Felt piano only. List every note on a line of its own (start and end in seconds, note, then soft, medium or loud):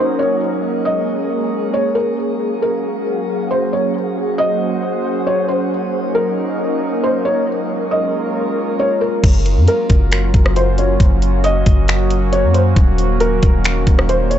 0.00 0.18 C5 medium
0.19 0.40 C#5 medium
0.85 1.69 D#5 medium
1.74 1.95 C#5 medium
1.95 2.16 A#4 medium
2.62 3.46 A#4 medium
3.51 3.71 C5 medium
3.73 3.94 C#5 medium
4.38 5.22 D#5 medium
5.27 5.48 C#5 medium
5.48 5.69 C5 medium
6.15 6.99 A#4 medium
7.03 7.24 C5 medium
7.25 7.46 C#5 medium
7.91 8.75 D#5 medium
8.79 9.00 C#5 medium
9.01 9.22 A#4 medium
9.68 10.52 A#4 medium
10.56 10.77 C5 medium
10.79 10.99 C#5 medium
11.44 12.28 D#5 loud
12.33 12.53 C#5 medium
12.54 12.75 C5 medium
13.21 14.05 A#4 medium
14.09 14.30 C5 medium
14.31 14.39 C#5 medium